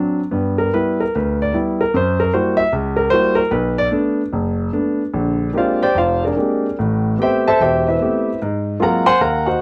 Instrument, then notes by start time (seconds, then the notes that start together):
grand piano
Already playing: F#3 C4 D4
0.31 G2 B3
0.58 A#4
0.73 G3 B3 E4 B4
1.00 A#4
1.15 D2 B4
1.42 D5
1.53 G3 B3 E4
1.81 A#4
1.94 F#2 C5
2.20 A#4
2.34 G3 A#3 E4 F#4 C5
2.57 E5
2.73 C#2
2.97 A#4
3.10 G3 A#3 E4 F#4 C5
3.35 A#4
3.51 B1 B4
3.78 D5
3.91 A3 B3 D4
4.33 F#1
4.72 A3 B3 D4
5.14 A#1 D3
5.53 G#3 A#3 C4 D4 G4 C5
5.58 F4 D5 F5
5.82 G4 C5 D5 G5
5.95 F1 F4 C5 D5 F5
6.25 D4 G#4 A#4 D5
6.37 G#3 A#3 C4 D4 G4
6.79 A1 A2
7.18 A3 B3 C4 G4 G5
7.23 G4 C5 E5
7.48 A4 C5 E5 A5
7.60 E1 G4 C5 E5 G5
7.88 E4 B4 C5 E5
8.01 A3 B3 C4 G4
8.42 G#2
8.80 F#3 G#3 A#3 C4 F4 A#4 F5 F#5 A#5
9.06 C5 F#5 G#5 C6
9.21 D#2 A#4 F5 F#5 A#5
9.46 F#4 C5 D#5 F#5